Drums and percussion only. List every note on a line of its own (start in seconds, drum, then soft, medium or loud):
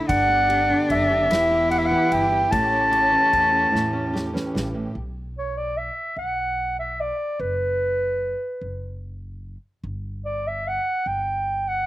0.09 kick medium
0.09 ride medium
0.50 ride medium
0.90 kick medium
0.90 ride medium
1.31 snare loud
1.31 ride medium
1.71 ride medium
2.12 ride medium
2.52 kick medium
2.52 ride medium
2.93 ride soft
3.33 kick medium
3.33 ride soft
3.75 snare medium
4.16 snare medium
4.36 snare medium
4.56 snare medium